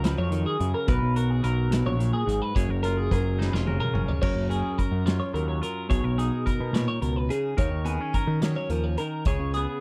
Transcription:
0.00 0.15 C#2 medium
0.00 0.31 F3 medium
0.00 1.43 F#3 medium
0.00 0.85 F4 medium
0.00 0.88 A#4 soft
0.00 0.18 B4 medium
0.04 snare loud
0.04 closed hi-hat medium
0.18 0.44 F2 medium
0.18 0.46 C#5 medium
0.31 0.59 D#3 medium
0.31 closed hi-hat medium
0.46 0.74 G#4 medium
0.60 0.73 F#2 medium
0.60 0.88 C#3 medium
0.60 closed hi-hat medium
0.74 0.88 A#4 medium
0.87 1.01 B1 loud
0.87 1.69 B2 medium
0.87 1.43 A#4 medium
0.87 1.16 B4 loud
0.87 kick loud
0.87 closed hi-hat medium
1.02 1.40 B1 medium
1.16 2.59 F#4 medium
1.16 1.30 A#4 medium
1.16 closed hi-hat medium
1.30 1.44 G#4 medium
1.43 1.82 B1 medium
1.43 3.10 F#3 medium
1.43 1.72 A#4 medium
1.43 2.56 A#4 medium
1.43 closed hi-hat medium
1.71 1.99 B2 medium
1.71 1.86 B4 medium
1.71 snare loud
1.71 closed hi-hat loud
1.86 2.11 A#1 medium
1.86 2.13 C#5 medium
1.99 2.26 A#2 medium
1.99 closed hi-hat medium
2.13 2.42 G#4 medium
2.26 2.40 G#1 loud
2.26 2.55 G#2 medium
2.26 closed hi-hat medium
2.42 2.55 B4 medium
2.55 2.68 F#1 loud
2.55 4.21 F#2 medium
2.55 2.70 G#4 medium
2.55 2.83 C#5 medium
2.55 kick loud
2.55 closed hi-hat medium
2.69 3.08 F#1 medium
2.69 3.11 A#4 medium
2.83 3.38 F4 medium
2.83 2.97 A#4 medium
2.83 closed hi-hat medium
2.97 3.11 G#4 medium
3.11 3.50 F#1 medium
3.11 5.33 F#3 medium
3.11 3.67 G#4 medium
3.11 3.39 A#4 medium
3.11 kick medium
3.11 closed hi-hat medium
3.39 3.53 D#4 medium
3.39 3.53 B4 medium
3.39 snare medium
3.52 3.78 F1 medium
3.52 4.23 F4 medium
3.52 3.80 C#5 medium
3.52 snare medium
3.66 4.22 C#3 medium
3.66 4.20 A#4 medium
3.66 high tom medium
3.80 4.08 A#4 medium
3.80 mid tom medium
3.94 4.07 F#1 medium
3.94 4.19 C#4 medium
3.94 mid tom medium
4.08 4.21 C#5 medium
4.08 floor tom medium
4.22 4.34 F#1 medium
4.22 5.89 F#2 medium
4.22 4.78 A#4 medium
4.22 4.49 C#5 medium
4.22 kick loud
4.22 crash medium
4.35 4.61 F#1 medium
4.50 5.87 C#4 medium
4.50 4.78 G#4 medium
4.50 closed hi-hat medium
4.78 5.06 A#4 medium
4.78 5.89 A#4 medium
4.78 kick medium
4.78 closed hi-hat medium
4.92 5.05 F#2 medium
5.06 5.19 F#2 medium
5.06 5.60 F4 medium
5.06 5.18 C#5 medium
5.06 snare loud
5.06 closed hi-hat medium
5.20 5.34 C#5 medium
5.34 5.60 D#2 medium
5.34 8.42 F#3 medium
5.34 5.48 A#4 medium
5.34 closed hi-hat medium
5.48 5.62 C#5 medium
5.62 5.87 F4 medium
5.62 5.89 A#4 medium
5.62 closed hi-hat medium
5.89 6.03 B1 loud
5.89 6.73 B2 medium
5.89 6.04 G#4 medium
5.89 6.18 C#5 medium
5.89 kick loud
5.89 closed hi-hat medium
6.04 6.30 B1 medium
6.04 6.45 A#4 medium
6.18 7.55 D#4 medium
6.18 6.46 G#4 medium
6.18 closed hi-hat medium
6.46 7.55 A#4 medium
6.46 6.74 A#4 medium
6.46 kick medium
6.46 closed hi-hat medium
6.60 6.73 B2 medium
6.73 7.01 A#2 medium
6.73 6.87 B2 medium
6.73 6.87 C#5 medium
6.73 snare loud
6.73 closed hi-hat medium
6.88 7.02 C#5 medium
7.02 7.28 C#2 medium
7.02 7.30 B2 medium
7.02 7.16 A#4 medium
7.02 closed hi-hat medium
7.16 7.30 B4 medium
7.30 7.56 C#3 medium
7.30 7.58 G#4 medium
7.30 closed hi-hat medium
7.57 7.70 D#2 loud
7.57 8.70 D#3 medium
7.57 8.14 A#4 medium
7.57 7.87 C#5 medium
7.57 kick loud
7.57 closed hi-hat medium
7.71 7.97 D#2 medium
7.85 8.01 B3 medium
7.85 8.14 G#4 medium
7.85 closed hi-hat medium
8.01 9.27 C#4 soft
8.14 8.42 A#4 medium
8.14 9.23 A#4 medium
8.14 kick medium
8.14 closed hi-hat medium
8.27 8.41 D#3 medium
8.41 8.55 D#3 medium
8.41 8.70 F#3 medium
8.41 8.55 C#5 medium
8.41 snare loud
8.41 closed hi-hat medium
8.56 8.70 C#5 medium
8.69 8.96 D#2 medium
8.69 8.99 F3 medium
8.69 8.84 A#4 medium
8.69 closed hi-hat medium
8.84 8.98 C#5 medium
8.98 9.27 D#3 medium
8.98 9.26 A#4 medium
8.98 closed hi-hat medium
9.25 9.39 C#2 medium
9.25 9.80 C#3 medium
9.25 9.80 G#4 medium
9.25 9.54 C#5 medium
9.25 kick loud
9.25 closed hi-hat medium
9.39 9.66 C#2 medium
9.54 9.80 B3 medium
9.54 9.80 G#4 medium
9.54 closed hi-hat medium

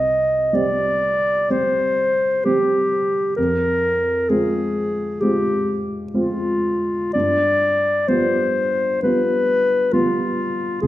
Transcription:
0.00 0.51 C2 soft
0.00 0.56 D#5 soft
0.53 1.46 G3 soft
0.53 1.46 C4 soft
0.53 1.46 G4 soft
0.53 1.52 D5 soft
1.50 2.41 G3 soft
1.50 2.41 C4 soft
1.50 2.41 G4 soft
1.50 2.46 C5 soft
2.44 3.33 G3 soft
2.44 3.34 C4 soft
2.44 3.36 G4 soft
2.44 3.34 G4 soft
3.37 4.27 F2 soft
3.37 4.31 A#4 soft
4.29 5.17 G#3 soft
4.29 5.17 C4 soft
4.29 5.17 F4 soft
4.29 5.22 G#4 soft
5.20 6.09 G#3 soft
5.20 6.09 C4 soft
5.20 6.10 F4 soft
5.20 5.85 G4 soft
6.12 7.11 G#3 soft
6.12 7.11 C4 soft
6.12 7.10 F4 soft
6.12 7.11 F4 soft
7.13 8.06 G2 soft
7.13 8.09 D5 soft
8.08 8.99 G3 soft
8.08 8.99 B3 soft
8.08 8.99 F4 soft
8.08 9.02 C5 soft
9.03 9.89 G3 soft
9.03 9.89 B3 soft
9.03 9.89 F4 soft
9.03 9.94 B4 medium
9.93 10.78 G3 soft
9.93 10.78 B3 soft
9.93 10.81 F4 soft
9.93 10.79 F4 soft
10.82 10.87 C2 soft
10.82 10.87 G#4 medium

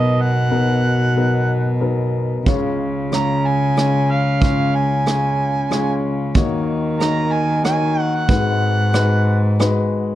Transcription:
0.00 0.45 B1 medium
0.00 0.45 B2 medium
0.00 2.42 B2 medium
0.00 0.51 F#3 medium
0.00 0.51 B3 medium
0.00 0.50 D#4 medium
0.00 0.51 A#4 medium
0.00 0.23 D#5 medium
0.21 1.83 F#5 medium
0.50 2.43 B1 soft
0.50 2.43 B2 soft
0.50 1.08 F#3 medium
0.50 1.08 B3 medium
0.50 1.08 D#4 medium
0.50 1.08 A#4 medium
1.16 1.74 F#3 medium
1.16 1.74 B3 medium
1.16 1.74 D#4 medium
1.16 1.74 A#4 medium
1.80 2.39 F#3 medium
1.80 2.39 B3 medium
1.80 2.39 D#4 medium
1.80 2.39 A#4 medium
2.46 4.38 C#2 medium
2.46 6.37 C#3 medium
2.46 4.38 C#3 medium
2.46 3.05 G#3 medium
2.46 3.04 C#4 medium
2.46 3.05 F4 medium
2.46 3.05 C#5 medium
2.46 kick medium
2.46 closed hi-hat soft
3.11 3.69 G#3 medium
3.11 3.69 C#4 medium
3.11 3.69 F4 soft
3.11 3.69 C#5 medium
3.11 3.48 A#5 medium
3.11 cross-stick medium
3.11 closed hi-hat soft
3.47 4.13 G#5 medium
3.76 4.34 G#3 medium
3.76 4.34 C#4 soft
3.76 4.34 F4 soft
3.76 4.35 C#5 medium
3.76 cross-stick medium
3.76 closed hi-hat soft
4.11 4.43 F5 medium
4.41 6.31 C#2 medium
4.41 6.31 C#3 soft
4.41 4.99 G#3 medium
4.41 4.99 C#4 medium
4.41 4.99 F4 medium
4.41 4.99 C#5 medium
4.41 4.77 F5 medium
4.41 kick medium
4.41 closed hi-hat soft
4.76 6.04 G#5 medium
5.06 5.64 G#3 medium
5.06 5.64 C#4 medium
5.06 5.64 F4 soft
5.06 5.64 C#5 medium
5.06 cross-stick medium
5.06 closed hi-hat soft
5.70 6.28 G#3 medium
5.70 6.28 C#4 medium
5.70 6.28 F4 medium
5.70 6.29 C#5 medium
5.70 cross-stick medium
5.70 closed hi-hat soft
6.34 8.25 D#2 medium
6.34 8.31 D#3 medium
6.34 8.25 D#3 medium
6.34 6.93 A#3 medium
6.34 6.93 D#4 medium
6.34 6.93 F#4 medium
6.34 6.93 C#5 medium
6.34 kick medium
6.34 closed hi-hat soft
7.00 7.57 A#3 medium
7.00 7.57 D#4 medium
7.00 7.58 F#4 medium
7.00 7.58 C#5 medium
7.00 7.33 A#5 medium
7.00 cross-stick medium
7.00 closed hi-hat soft
7.32 7.64 G#5 medium
7.63 8.21 A#3 medium
7.63 8.21 D#4 medium
7.63 8.21 F#4 medium
7.63 8.21 C#5 medium
7.63 8.01 G#5 medium
7.63 cross-stick medium
7.63 closed hi-hat soft
8.01 8.15 F#5 medium
8.15 9.59 F#5 medium
8.29 10.15 G#1 medium
8.29 10.15 G#2 medium
8.29 8.86 G#3 medium
8.29 8.86 D#4 medium
8.29 8.86 F#4 medium
8.29 8.86 B4 medium
8.29 kick medium
8.29 closed hi-hat soft
8.93 9.51 G#3 medium
8.93 9.51 D#4 medium
8.93 9.51 F#4 medium
8.93 9.51 B4 medium
8.93 cross-stick medium
8.93 closed hi-hat soft
9.59 10.15 G#3 medium
9.59 10.15 D#4 medium
9.59 10.15 F#4 medium
9.59 10.15 B4 medium
9.59 cross-stick medium
9.59 closed hi-hat soft

